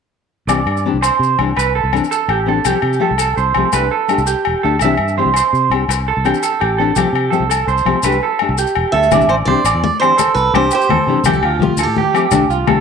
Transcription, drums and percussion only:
0.49 low agogo medium
0.49 maracas medium
0.67 low agogo medium
0.77 maracas soft
1.02 low agogo medium
1.02 maracas medium
1.23 maracas soft
1.39 low agogo medium
1.57 low agogo medium
1.57 maracas medium
1.93 low agogo medium
1.93 maracas soft
2.04 maracas soft
2.12 maracas medium
2.29 low agogo medium
2.65 low agogo medium
2.65 maracas medium
2.82 low agogo medium
2.93 maracas soft
3.18 low agogo medium
3.18 maracas medium
3.38 maracas soft
3.54 low agogo medium
3.73 low agogo medium
3.73 maracas medium
4.09 low agogo medium
4.09 maracas soft
4.18 maracas soft
4.27 maracas medium
4.45 low agogo medium
4.79 low agogo medium
4.79 maracas medium
4.97 low agogo medium
5.08 maracas soft
5.34 low agogo soft
5.34 maracas medium
5.55 maracas soft
5.72 low agogo medium
5.89 low agogo medium
5.89 maracas medium
6.25 low agogo medium
6.25 maracas soft
6.34 maracas soft
6.43 maracas medium
6.61 low agogo medium
6.96 low agogo medium
6.96 maracas medium
7.15 low agogo medium
7.33 maracas soft
7.51 low agogo medium
7.51 maracas medium
7.68 maracas soft
7.78 maracas soft
7.86 low agogo medium
8.03 low agogo medium
8.03 maracas medium
8.12 maracas soft
8.39 low agogo medium
8.58 maracas medium
8.67 maracas soft
8.75 low agogo medium
9.03 maracas soft
9.11 high conga medium
9.11 low conga medium
9.11 low agogo medium
9.11 maracas medium
9.21 maracas soft
9.29 low agogo medium
9.48 low conga medium
9.65 low agogo medium
9.65 maracas medium
9.84 high conga medium
9.84 low conga medium
10.02 low agogo medium
10.02 maracas soft
10.10 low conga soft
10.18 high conga medium
10.18 low conga medium
10.18 low agogo medium
10.18 maracas medium
10.28 low conga soft
10.36 maracas soft
10.55 high conga medium
10.55 low agogo medium
10.71 maracas medium
10.81 maracas soft
10.90 high conga medium
10.90 low conga medium
10.90 low agogo medium
11.18 low conga soft
11.24 high conga medium
11.24 low conga medium
11.24 low agogo medium
11.24 maracas medium
11.33 maracas soft
11.43 low agogo medium
11.62 high conga medium
11.62 low conga medium
11.77 low agogo medium
11.77 maracas medium
11.96 high conga medium
11.96 low conga medium
12.15 low agogo medium
12.15 maracas soft
12.31 high conga medium
12.31 low conga medium
12.31 low agogo medium
12.31 maracas medium
12.41 low conga soft
12.50 maracas soft
12.67 high conga medium
12.67 low conga medium
12.67 low agogo medium

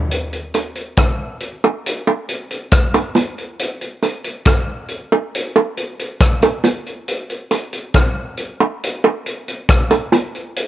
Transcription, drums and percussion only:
0.11 closed hi-hat medium
0.33 closed hi-hat soft
0.54 closed hi-hat medium
0.54 high bongo medium
0.75 closed hi-hat medium
0.97 kick medium
0.97 cross-stick medium
0.97 closed hi-hat medium
0.97 high bongo medium
1.40 closed hi-hat medium
1.64 high bongo medium
1.86 closed hi-hat loud
2.07 high bongo medium
2.29 closed hi-hat medium
2.51 closed hi-hat medium
2.71 kick loud
2.71 cross-stick loud
2.71 closed hi-hat loud
2.94 closed hi-hat medium
2.94 high bongo medium
3.15 closed hi-hat medium
3.15 low bongo medium
3.38 closed hi-hat soft
3.59 closed hi-hat medium
3.81 closed hi-hat soft
4.03 closed hi-hat medium
4.03 high bongo medium
4.24 closed hi-hat medium
4.45 kick loud
4.45 cross-stick loud
4.45 closed hi-hat medium
4.45 high bongo medium
4.88 closed hi-hat medium
5.12 high bongo medium
5.35 closed hi-hat medium
5.56 high bongo medium
5.77 closed hi-hat medium
5.99 closed hi-hat medium
6.20 kick loud
6.20 cross-stick loud
6.20 closed hi-hat loud
6.42 closed hi-hat medium
6.42 high bongo medium
6.64 closed hi-hat medium
6.64 low bongo medium
6.86 closed hi-hat soft
7.08 closed hi-hat medium
7.30 closed hi-hat soft
7.51 closed hi-hat medium
7.51 high bongo medium
7.73 closed hi-hat medium
7.94 kick medium
7.94 cross-stick loud
7.94 closed hi-hat medium
7.94 high bongo medium
8.37 closed hi-hat medium
8.60 high bongo medium
8.84 closed hi-hat medium
9.04 high bongo medium
9.26 closed hi-hat medium
9.48 closed hi-hat medium
9.69 kick loud
9.69 cross-stick loud
9.69 closed hi-hat loud
9.90 closed hi-hat medium
9.90 high bongo medium
10.12 closed hi-hat medium
10.12 low bongo medium
10.35 closed hi-hat soft
10.56 closed hi-hat medium

